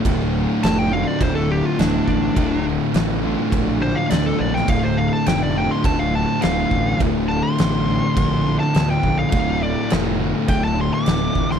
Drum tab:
CC |x---x---x---x---|x---x---x---x---|x---x---x---x---|x---x---x---x---|
SD |----o-------o---|----o-------o--o|----o-------o---|----o-------o---|
BD |o-------o-----o-|o-------o-------|o-------o-----o-|o-------o-----o-|

CC |x---x---x---x---|
SD |----o-------o--o|
BD |o-------o-----o-|